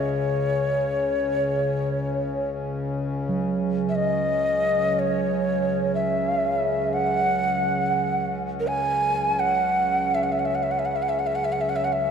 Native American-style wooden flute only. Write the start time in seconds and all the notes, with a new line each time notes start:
Already playing: C#5
3.89 E5
3.95 D#5
4.99 C#5
5.95 E5
6.93 F#5
8.60 A#4
8.67 G#5
9.39 F#5
10.15 E5
10.23 F#5
10.32 E5
10.39 F#5
10.45 E5
10.55 F#5
10.63 E5
10.71 F#5
10.79 E5
10.85 F#5
10.96 E5
11.02 F#5
11.09 E5
11.19 F#5
11.27 E5
11.35 F#5
11.45 E5
11.52 F#5
11.61 E5
11.69 F#5
11.76 E5
11.85 F#5
11.93 E5